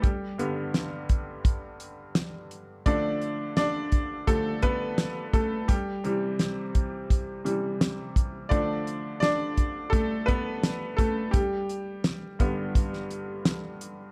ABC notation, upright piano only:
X:1
M:4/4
L:1/8
Q:1/4=85
K:Gmix
V:1 name="Upright piano"
[G,G]4 z4 | [Dd]2 [Dd]2 A [B,B]2 [A,A] | [G,G]4 z4 | [Dd]2 [Dd]2 [A,A] [B,B]2 [A,A] |
[G,G]4 z4 |]
V:2 name="Upright piano" clef=bass
z [G,,D,B,]3 z4 | [D,F,A,]4 [D,F,A,] z3 | z [C,E,G,]3 z [C,E,G,] z2 | [D,F,A,]3 z4 z |
z3 [G,,D,B,]3 z2 |]